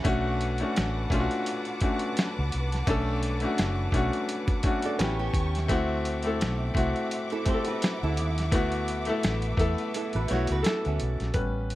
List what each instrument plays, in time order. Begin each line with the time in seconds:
Already playing: nylon-string guitar C#4 F#4, string section F#5
0.04 fingered electric bass B1, grand piano A3 C#4 D4 F#4, string section B4 A5 D6, kick, closed hi-hat
0.41 closed hi-hat
0.58 grand piano A3 C#4 D4, closed hi-hat
0.63 grand piano F#4
0.76 fingered electric bass A1, snare, closed hi-hat
1.10 fingered electric bass B1, grand piano A3 C#4 D4 F4, kick, closed hi-hat
1.20 grand piano F#4
1.31 closed hi-hat
1.46 closed hi-hat
1.65 closed hi-hat
1.81 grand piano A3 C#4 D4 F#4, kick, closed hi-hat
1.99 closed hi-hat
2.17 snare, closed hi-hat
2.39 fingered electric bass C#2
2.52 fingered electric bass C2, closed hi-hat
2.72 snare, closed hi-hat
2.87 fingered electric bass B1, grand piano A3 C#4 D4 A4, kick, closed hi-hat
3.23 closed hi-hat
3.40 grand piano A3 C#4 D4, closed hi-hat
3.44 grand piano F#4
3.58 fingered electric bass F#1, snare, closed hi-hat
3.92 fingered electric bass B1, grand piano A3 C#4 D4 F#4, kick, closed hi-hat
4.13 closed hi-hat
4.29 closed hi-hat
4.48 kick, closed hi-hat
4.63 grand piano A3 C#4 D4 F#4, kick, closed hi-hat
4.82 nylon-string guitar A4 D5, closed hi-hat
4.98 fingered electric bass A1, grand piano B3 C#4 E4 G4, nylon-string guitar F#4 B4, string section G5 C#6, snare, closed hi-hat
5.19 nylon-string guitar C#4 G4
5.34 fingered electric bass D#2, kick, closed hi-hat
5.55 snare, closed hi-hat
5.68 fingered electric bass D2, grand piano A3 C4 E4 F#4, string section C4 E5 F#5 D6, kick, closed hi-hat
6.05 closed hi-hat
6.23 grand piano A3 C4 E4, closed hi-hat
6.27 grand piano A4
6.41 fingered electric bass B1, snare, closed hi-hat
6.74 fingered electric bass C2, grand piano A3 C4 E4 F#4, kick, closed hi-hat
6.96 closed hi-hat
7.11 closed hi-hat
7.30 nylon-string guitar E4 A4, closed hi-hat
7.45 grand piano A3 C4 E4 G4, nylon-string guitar F#4 C5, kick, closed hi-hat
7.54 grand piano A4
7.65 nylon-string guitar F#4 B4, closed hi-hat
7.82 snare, closed hi-hat
8.03 fingered electric bass D2, nylon-string guitar E4 A4
8.17 fingered electric bass D#2, closed hi-hat
8.38 snare, closed hi-hat
8.51 fingered electric bass D2, grand piano A3 B3 E4 F#4, string section B4, kick, closed hi-hat
8.72 closed hi-hat
8.88 closed hi-hat
9.05 grand piano A3 B3 E4 A4, closed hi-hat
9.23 fingered electric bass A1, snare, closed hi-hat
9.42 closed hi-hat
9.57 fingered electric bass E2, grand piano A3 B3 E4 A4, kick, closed hi-hat
9.78 closed hi-hat
9.94 nylon-string guitar E4 A4, closed hi-hat
10.13 fingered electric bass A1, nylon-string guitar F#4 B4, closed hi-hat
10.28 fingered electric bass B1, grand piano A3 B3 E4 F#4, nylon-string guitar F#4 C#5, closed hi-hat
10.33 snare
10.47 fingered electric bass C#2, closed hi-hat
10.52 nylon-string guitar F#4 B4
10.62 grand piano A4, snare, closed hi-hat
10.67 nylon-string guitar E4 A4
10.85 fingered electric bass D2, nylon-string guitar C#4 F#4, closed hi-hat
11.00 fingered electric bass B1, closed hi-hat
11.20 fingered electric bass A#1, snare, closed hi-hat
11.34 fingered electric bass A1, grand piano G3 B3 C#4 B4, kick, closed hi-hat
11.70 closed hi-hat